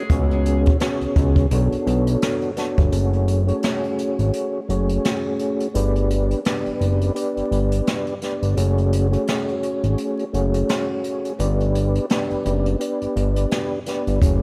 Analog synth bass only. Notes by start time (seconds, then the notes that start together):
0.10 C#2
1.01 C#2
1.16 C#2
1.51 B1
1.72 B1
1.87 B1
2.78 G1
2.93 F#1
4.19 G#1
4.69 F#1
5.75 G1
6.66 F#1
6.81 F#1
7.37 G1
7.51 G1
8.43 G1
8.57 F#1
9.84 G#1
10.34 F#1
11.40 G1
12.31 F#1
12.46 F#1
13.02 G1
13.16 G1
14.07 G1
14.22 F#1